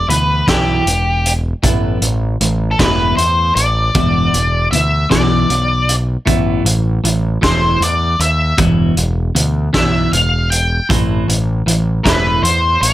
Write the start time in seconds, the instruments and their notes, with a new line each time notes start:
0.08 picked electric bass D2, clean electric guitar E2 B2, lead electric guitar B4, closed hi-hat
0.47 picked electric bass B1, clean electric guitar E2 B2 E3, lead electric guitar G4, kick, snare, closed hi-hat
0.86 picked electric bass E1, clean electric guitar B2, closed hi-hat
1.26 closed hi-hat
1.63 picked electric bass A1, clean electric guitar A2 E3 B3, kick, closed hi-hat
2.02 picked electric bass A1, clean electric guitar A2 E3, closed hi-hat
2.41 picked electric bass A1, clean electric guitar A2 E3, closed hi-hat
2.71 lead electric guitar A4
2.79 picked electric bass E1, clean electric guitar A2 E3 B3, lead electric guitar B4, kick, snare, closed hi-hat
3.17 picked electric bass E2, clean electric guitar A2 E3, lead electric guitar C5, closed hi-hat
3.56 picked electric bass A1, lead electric guitar D5, closed hi-hat
3.95 picked electric bass E1, clean electric guitar E2 B2 E3, kick, closed hi-hat
4.34 picked electric bass E1, clean electric guitar E2 B2, closed hi-hat
4.71 picked electric bass D2, clean electric guitar E2 B2, lead electric guitar E5, closed hi-hat
5.10 picked electric bass B1, clean electric guitar E2 B2 E3, lead electric guitar D5, kick, snare, closed hi-hat
5.49 picked electric bass B1, clean electric guitar E2 B2, closed hi-hat
5.89 closed hi-hat
6.26 picked electric bass A1, clean electric guitar A2 E3 B3, kick, closed hi-hat
6.65 picked electric bass A1, clean electric guitar A2 E3, closed hi-hat
7.04 picked electric bass A1, clean electric guitar A2 E3, closed hi-hat
7.41 picked electric bass E1, clean electric guitar A2 E3, lead electric guitar C5, kick, snare, closed hi-hat
7.81 picked electric bass E2, clean electric guitar A2 E3, lead electric guitar D5, closed hi-hat
8.19 picked electric bass D#2, lead electric guitar E5, closed hi-hat
8.57 picked electric bass E1, clean electric guitar E2 B2 E3, kick, closed hi-hat
8.97 picked electric bass E1, clean electric guitar B2, closed hi-hat
9.35 picked electric bass D2, clean electric guitar E2 B2, closed hi-hat
9.73 picked electric bass B1, clean electric guitar E2 B2 E3, lead electric guitar E5, kick, snare, closed hi-hat
10.12 picked electric bass E1, clean electric guitar E2 B2, lead electric guitar F5, closed hi-hat
10.50 lead electric guitar G5, closed hi-hat
10.89 picked electric bass A1, clean electric guitar A2 E3 C4, kick, closed hi-hat
11.28 picked electric bass A1, clean electric guitar A2 E3, closed hi-hat
11.66 picked electric bass A1, clean electric guitar A2 E3, closed hi-hat
12.04 picked electric bass E1, clean electric guitar A2 E3 C4, lead electric guitar B4, kick, snare, closed hi-hat
12.43 picked electric bass E2, clean electric guitar A2 E3, lead electric guitar C5, closed hi-hat
12.81 picked electric bass A1, lead electric guitar D5, closed hi-hat